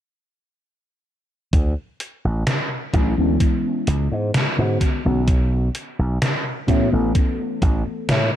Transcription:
1.53 slap bass D2, kick, closed hi-hat
2.00 closed hi-hat
2.25 slap bass A1
2.47 snare, closed hi-hat
2.93 slap bass A1, fm electric piano D3 F#3 A3 C#4 E4, kick, closed hi-hat
3.17 slap bass D2, fm electric piano E3 G#3 B3 C#4 E4
3.40 kick, closed hi-hat
3.87 slap bass C#2, closed hi-hat
4.12 slap bass G#2
4.34 snare, closed hi-hat
4.58 slap bass G#2, fm electric piano D3 G#3 B3 C#4 F#4
4.81 kick, closed hi-hat
5.04 slap bass B1, fm electric piano D3 G#3 B3 C#4 F#4
5.28 kick, closed hi-hat
5.75 closed hi-hat
5.99 slap bass B1
6.22 snare, closed hi-hat
6.67 slap bass A2, fm electric piano E3 A3 B3 C#4 F#4, kick, closed hi-hat
6.91 slap bass A1, fm electric piano E3 A3 B3 C#4 A4
7.15 kick, closed hi-hat
7.62 slap bass A1, kick, closed hi-hat
8.09 slap bass A2, snare, closed hi-hat

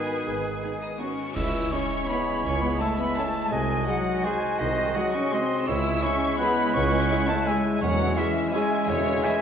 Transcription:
Already playing: harp G#2 D#3 B3 D#4 D#5 G#5, bassoon D#3, french horn section B3 D#4, cello section F#4, oboe G#4, violin section B4 G#5, clarinet B4, flute D#6
0.00 harp B4
0.08 harp G#4
0.16 harp D#4
0.26 double bass section G#1, harp G#2, cello section G#4
0.35 harp D#3
0.44 harp B3
0.53 harp D#4
0.61 viola section B3 D#4, cello section G#4, harp G#4
0.71 harp B4
0.80 french horn section D#4, cello section D#4, harp D#5, flute D#6, violin section D#6
0.90 harp G#5
0.98 viola section B3 D#4, french horn section C#4, cello section C#4 F#4, flute C#6, violin section C#6
1.09 harp B4
1.18 harp G#4
1.27 harp D#4
1.34 tuba C#2, double bass section C#2, harp C#3, bassoon G#3, french horn section E4, cello section E4, clarinet E4, oboe C#5, violin section E6, flute E6, concert bass drum, crash
1.45 harp G#3
1.54 harp C#4
1.63 harp E4
1.72 viola section C#4 E4, cello section C#4, french horn section C#4, violin section G#4 C#5 C#6, harp G#4, flute C#6
1.82 harp C#5
1.92 harp E5
2.01 harp G#5
2.08 cello section B3, french horn section B3, viola section C#4 E4, violin section G#4 C#5 B5, harp C#5, flute B5
2.19 harp E4
2.27 harp C#4
2.36 harp G#3
2.44 double bass section C#2, tuba C#2, harp C#3, cello section C#4, french horn section C#4, violin section C#6, flute C#6
2.53 harp C#4
2.61 harp G#3, cello section B3, french horn section B3, violin section B5, flute B5
2.71 harp E4
2.79 cello section A3, french horn section A3, viola section C#4 E4, violin section G#4 C#5 A5, harp G#4, oboe E5, flute A5
2.90 harp C#5
2.98 french horn section B3, cello section B3, harp E5, violin section B5, flute B5
3.16 cello section A3, french horn section A3, viola section C#4 E4, violin section G#4 C#5 A5, harp C#5, flute A5
3.26 harp E4
3.35 harp C#4
3.44 harp G#3
3.51 tuba C2, double bass section C2, harp C3, bassoon G#3, french horn section G#3, cello section G#3, clarinet F#4, oboe D#5, violin section G#5, flute G#5
3.60 harp C4
3.70 harp D#4
3.78 harp F#4
3.87 french horn section F#3, cello section F#3, viola section G#3 F#4, violin section G#4 D#5 F#5, harp G#4, flute F#5
3.97 harp D#5
4.16 harp G#5
4.24 cello section G#3, french horn section G#3, viola section G#3 F#4, violin section G#4 D#5 G#5, oboe C5, harp D#5, flute G#5
4.34 harp F#4
4.43 harp D#4
4.52 harp C4
4.59 tuba C2, double bass section C2, harp C3, cello section D#3, french horn section D#3, oboe C5, violin section D#5, flute D#5
4.69 harp D#4
4.77 harp C4
4.86 harp F#4
4.95 cello section F#3, french horn section F#3, viola section G#3 F#4, violin section G#4 D#5 F#5, harp G#4, oboe D#5, flute F#5
5.05 harp D#5
5.13 cello section C#4, french horn section C#4, violin section C#6, flute C#6
5.23 harp G#5
5.32 viola section G#3 F#4, cello section C4, french horn section C4, violin section G#4 D#5 C6, harp D#5, oboe D#5, flute C6
5.42 harp F#4
5.50 harp D#4
5.60 harp C4
5.66 tuba C#2, double bass section C#2, harp C#3, bassoon G#3, french horn section E4, cello section E4, clarinet E4, oboe C#5, violin section E6, flute E6
5.77 harp G#3
5.86 harp C#4
5.94 harp E4
6.02 viola section G#3 E4, french horn section C#4, cello section C#4, violin section G#4 C#5 C#6, harp G#4, oboe E5, flute C#6
6.13 harp C#5
6.22 harp E5
6.32 harp G#5
6.39 viola section G#3 E4, cello section B3, french horn section B3, violin section G#4 C#5 B5, harp C#5, oboe F#5, flute B5
6.49 harp E4
6.58 harp C#4
6.66 harp G#3
6.74 double bass section C#2, tuba C#2, harp C#3, cello section C#4, french horn section C#4, flute C#6, violin section C#6
6.83 harp C#4
6.91 harp G#3
7.01 harp E4
7.10 viola section G#3 E4, harp G#4, violin section G#4 C#5
7.28 french horn section A3, cello section A3, harp E5, flute A5, violin section A5
7.37 harp G#5
7.46 cello section G#3, viola section G#3 E4, french horn section G#3, violin section G#4 C#5 G#5, harp C#5, oboe E5, flute G#5
7.56 harp E4
7.65 harp C#4
7.73 harp G#3
7.81 tuba E1, double bass section E2, harp E3, cello section F#3, french horn section F#3, bassoon G#3, clarinet C#4, oboe C#5, flute F#5, violin section F#5
7.90 harp C#4
7.99 harp E4
8.08 harp G#4
8.16 french horn section E3, cello section E3, viola section G#3 E4, violin section G#4 C#5 E5, harp C#5, flute E5
8.27 harp E5
8.36 harp G#5
8.44 harp C#6
8.53 viola section G#3 E4, cello section G#3, french horn section G#3, violin section G#4 C#5 G#5, harp E5, oboe E5, flute G#5
8.63 harp G#4
8.71 harp E4
8.81 harp C#4
8.88 tuba E1, double bass section E2, french horn section C#3, cello section C#3, harp E3, flute C#5, violin section C#5
8.97 harp E4
9.06 harp C#4
9.15 harp G#4
9.23 french horn section E3, cello section E3, viola section G#3 E4, violin section G#4 C#5 E5, harp C#5, flute E5, oboe G#5
9.34 harp E5

